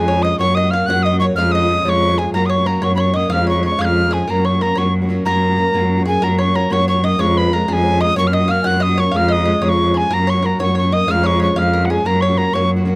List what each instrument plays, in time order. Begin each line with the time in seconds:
Already playing: cello F2, tin whistle G#5
0.00 steel-string acoustic guitar G#3 C#4 F4
0.07 flute C#5, five-string banjo C#5
0.15 steel-string acoustic guitar G#3 C#4 F4
0.22 steel-string acoustic guitar F3 G#3 C#4 F4, flute D#5, five-string banjo D#5, tin whistle D#6
0.38 cello F#2, steel-string acoustic guitar F#3 A#3 C#4 F#4, flute C#5, five-string banjo C#5, tin whistle C#6
0.46 steel-string acoustic guitar A#3 C#4 F#4
0.55 flute D#5, five-string banjo D#5, tin whistle D#6
0.63 steel-string acoustic guitar A#3 C#4 F#4
0.71 steel-string acoustic guitar F#3 A#3 C#4 F#4, flute F5, five-string banjo F5, tin whistle F6
0.86 cello F#2, steel-string acoustic guitar F#3 A#3 C#4 F#4, flute F#5, five-string banjo F#5, tin whistle F#6
0.96 steel-string acoustic guitar A#3 C#4 F#4
1.03 flute D#5, five-string banjo D#5, tin whistle D#6
1.12 steel-string acoustic guitar A#3 C#4 F#4
1.19 steel-string acoustic guitar F#3 A#3 C#4 F#4, five-string banjo C#5, flute C#5, tin whistle C#6
1.36 cello F2, steel-string acoustic guitar F3 G#3 C#4 F4, flute F5, five-string banjo F5, tin whistle F6
1.44 steel-string acoustic guitar G#3 C#4 F4
1.52 flute D#5, five-string banjo D#5, tin whistle D#6
1.60 steel-string acoustic guitar G#3 C#4 F4
1.69 steel-string acoustic guitar F3 G#3 C#4 F4
1.85 cello F2, steel-string acoustic guitar F3 G#3 C#4 F4, flute C#5, five-string banjo C#5, tin whistle D#6
1.89 steel-string acoustic guitar F4, tin whistle C#6
1.94 steel-string acoustic guitar G#3 C#4
2.09 steel-string acoustic guitar G#3 C#4 F4
2.17 steel-string acoustic guitar F3 G#3 C#4 F4, flute G#4, five-string banjo G#4, tin whistle G#5
2.33 cello F#2, steel-string acoustic guitar F#3 A#3 C#4 F#4, flute A#4, five-string banjo A#4, tin whistle A#5
2.42 steel-string acoustic guitar A#3 C#4 F#4
2.46 flute C#5, five-string banjo C#5, tin whistle D#6
2.50 tin whistle C#6
2.57 steel-string acoustic guitar A#3 C#4 F#4
2.65 steel-string acoustic guitar F#3 A#3 C#4 F#4, flute A#4, five-string banjo A#4, tin whistle A#5
2.82 cello F#2, steel-string acoustic guitar F#3 A#3 C#4 F#4, flute C#5, five-string banjo C#5, tin whistle C#6
2.89 steel-string acoustic guitar A#3 C#4 F#4
2.95 flute C#5, five-string banjo C#5, tin whistle B5
3.00 tin whistle C#6
3.06 steel-string acoustic guitar A#3 C#4 F#4
3.13 steel-string acoustic guitar F#3 A#3 C#4 F#4, flute D#5, five-string banjo D#5, tin whistle D#6
3.30 cello F2, steel-string acoustic guitar F3 G#3 C#4 F4, five-string banjo F5, flute F5, tin whistle F6
3.39 steel-string acoustic guitar G#3 C#4 F4
3.47 flute C#5, five-string banjo C#5, tin whistle C#6
3.55 steel-string acoustic guitar G#3 C#4 F4
3.63 steel-string acoustic guitar F3 G#3 C#4 F4, five-string banjo C#5, tin whistle C#6
3.72 flute D#5
3.79 cello F2, steel-string acoustic guitar F3 G#3 C#4 F4, five-string banjo F5, flute F5, tin whistle G#6
3.85 steel-string acoustic guitar C#4 F4, tin whistle F6
3.90 steel-string acoustic guitar G#3
4.04 steel-string acoustic guitar G#3 C#4 F4
4.11 steel-string acoustic guitar F3 G#3 C#4 F4, five-string banjo G#4, flute G#4, tin whistle G#5
4.28 cello F#2, steel-string acoustic guitar F#3 A#3 C#4 F#4, five-string banjo A#4, flute A#4, tin whistle A#5
4.36 steel-string acoustic guitar A#3 C#4 F#4
4.45 five-string banjo C#5, flute C#5, tin whistle C#6
4.53 steel-string acoustic guitar A#3 C#4 F#4
4.60 steel-string acoustic guitar F#3 A#3 C#4 F#4, flute A#4, five-string banjo A#4, tin whistle A#5
4.75 cello F#2, steel-string acoustic guitar F#3 A#3 C#4 F#4, five-string banjo C#5, flute C#5, tin whistle C#6
4.85 steel-string acoustic guitar A#3 C#4 F#4
5.02 steel-string acoustic guitar A#3 C#4 F#4
5.09 steel-string acoustic guitar F#3 A#3 C#4 F#4
5.25 cello F#2, steel-string acoustic guitar F#3 A#3 C#4 F#4, five-string banjo A#4, flute A#4, tin whistle A#5
5.34 steel-string acoustic guitar A#3 C#4 F#4
5.49 steel-string acoustic guitar A#3 C#4 F#4
5.57 steel-string acoustic guitar F#3 A#3 C#4 F#4
5.74 cello F#2, steel-string acoustic guitar F#3 A#3 C#4 F#4
5.82 steel-string acoustic guitar A#3 C#4 F#4
5.97 steel-string acoustic guitar A#3 C#4 F#4
6.05 steel-string acoustic guitar F#3 A#3 C#4 F#4, five-string banjo G#4, flute G#4, tin whistle G#5
6.22 cello F#2, steel-string acoustic guitar F#3 A#3 C#4 F#4, five-string banjo A#4, flute A#4, tin whistle A#5
6.29 steel-string acoustic guitar A#3 C#4 F#4
6.38 five-string banjo C#5, flute C#5, tin whistle C#6
6.45 steel-string acoustic guitar A#3 C#4 F#4
6.53 steel-string acoustic guitar F#3 A#3 C#4 F#4, five-string banjo A#4, tin whistle A#5
6.70 cello F#2, steel-string acoustic guitar F#3 A#3 C#4 F#4, flute C#5, five-string banjo C#5, tin whistle C#6
6.78 steel-string acoustic guitar A#3 C#4 F#4
6.88 five-string banjo C#5, flute C#5, tin whistle C#6
6.94 steel-string acoustic guitar A#3 C#4 F#4
7.02 steel-string acoustic guitar F#3 A#3 C#4 F#4, five-string banjo D#5, flute D#5, tin whistle D#6
7.18 cello F2, steel-string acoustic guitar F3 G#3 C#4 F4, five-string banjo C#5, flute C#5, tin whistle C#6
7.27 steel-string acoustic guitar G#3 C#4 F4
7.37 flute B4, tin whistle B5
7.43 steel-string acoustic guitar G#3 C#4 F4
7.52 steel-string acoustic guitar F3 G#3 C#4 F4, flute A#4, five-string banjo A#4, tin whistle A#5
7.68 cello F2, steel-string acoustic guitar F3 G#3 C#4 F4, five-string banjo G#4, flute G#4, tin whistle A#5
7.73 steel-string acoustic guitar F4, tin whistle G#5
7.77 steel-string acoustic guitar G#3 C#4
7.84 flute C#5
7.92 steel-string acoustic guitar G#3 C#4 F4
8.00 steel-string acoustic guitar F3 G#3 C#4 F4, flute D#5, five-string banjo D#5, tin whistle D#6
8.15 cello F#2, steel-string acoustic guitar F#3 A#3 C#4 F#4, flute C#5, five-string banjo C#5, tin whistle C#6
8.24 steel-string acoustic guitar A#3 C#4 F#4, tin whistle F6
8.31 flute D#5, five-string banjo D#5, tin whistle D#6
8.40 steel-string acoustic guitar A#3 C#4 F#4
8.48 steel-string acoustic guitar F#3 A#3 C#4 F#4, five-string banjo F5, flute F5, tin whistle F6
8.62 steel-string acoustic guitar F#3 A#3 C#4 F#4, five-string banjo F#5, flute F#5 G#5
8.66 cello F#2, tin whistle F#6
8.73 steel-string acoustic guitar A#3 C#4 F#4
8.80 five-string banjo D#5, flute D#5, tin whistle D#6
8.89 steel-string acoustic guitar A#3 C#4 F#4
8.97 steel-string acoustic guitar F#3 A#3 C#4 F#4, flute C#5, five-string banjo C#5, tin whistle C#6
9.11 cello F2, steel-string acoustic guitar F3 G#3 C#4 F4, five-string banjo F5, flute F5
9.16 tin whistle F6
9.21 steel-string acoustic guitar G#3 C#4 F4
9.28 five-string banjo D#5, flute D#5, tin whistle D#6
9.38 steel-string acoustic guitar G#3 C#4 F4
9.45 steel-string acoustic guitar F3 G#3 C#4 F4, five-string banjo D#5
9.62 cello F2, steel-string acoustic guitar F3 G#3 C#4 F4, five-string banjo C#5, flute C#5, tin whistle D#6
9.69 steel-string acoustic guitar G#3 C#4 F4, tin whistle C#6
9.74 flute C#5
9.84 steel-string acoustic guitar G#3 C#4 F4, flute C#5
9.94 steel-string acoustic guitar F3 G#3 C#4 F4, five-string banjo G#4, flute G#4, tin whistle G#5
10.10 cello F#2, steel-string acoustic guitar F#3 A#3 C#4 F#4, five-string banjo A#4, flute A#4, tin whistle A#5
10.18 steel-string acoustic guitar A#3 C#4 F#4
10.27 five-string banjo C#5, flute C#5, tin whistle C#6
10.34 steel-string acoustic guitar A#3 C#4 F#4
10.43 steel-string acoustic guitar F#3 A#3 C#4 F#4, five-string banjo A#4, flute A#4, tin whistle A#5
10.59 cello F#2, steel-string acoustic guitar F#3 A#3 C#4 F#4, flute C#5, five-string banjo C#5, tin whistle C#6
10.66 steel-string acoustic guitar A#3 C#4 F#4
10.75 five-string banjo C#5, flute C#5, tin whistle C#6
10.83 steel-string acoustic guitar A#3 C#4 F#4
10.91 steel-string acoustic guitar F#3 A#3 C#4 F#4, five-string banjo D#5, flute D#5, tin whistle D#6
11.07 cello F2, steel-string acoustic guitar F3 G#3 C#4 F4, five-string banjo F5, flute F5, tin whistle F6
11.15 steel-string acoustic guitar G#3 C#4 F4
11.23 five-string banjo C#5, flute C#5, tin whistle C#6
11.32 steel-string acoustic guitar G#3 C#4 F4
11.39 steel-string acoustic guitar F3 G#3 C#4 F4, five-string banjo C#5, flute C#5, tin whistle C#6
11.56 cello F2, steel-string acoustic guitar F3 G#3 C#4 F4, five-string banjo F5, flute F5, tin whistle F6
11.63 steel-string acoustic guitar G#3 C#4 F4
11.74 five-string banjo A#4
11.80 steel-string acoustic guitar G#3 C#4 F4
11.85 steel-string acoustic guitar F3, tin whistle F#5
11.90 steel-string acoustic guitar G#3 C#4 F4, five-string banjo G#4, flute G#4, tin whistle G#5
12.05 cello F#2, steel-string acoustic guitar F#3 A#3 C#4 F#4, five-string banjo A#4, flute A#4, tin whistle A#5
12.13 steel-string acoustic guitar A#3 C#4 F#4
12.21 flute C#5, five-string banjo C#5, tin whistle C#6
12.29 steel-string acoustic guitar A#3 C#4 F#4
12.37 steel-string acoustic guitar F#3 A#3 C#4 F#4, flute A#4, tin whistle A#5
12.53 cello F#2, steel-string acoustic guitar F#3 A#3 C#4 F#4, flute C#5, five-string banjo C#5, tin whistle C#6
12.61 steel-string acoustic guitar A#3 C#4 F#4
12.76 steel-string acoustic guitar A#3 C#4 F#4
12.85 steel-string acoustic guitar F#3 A#3 C#4 F#4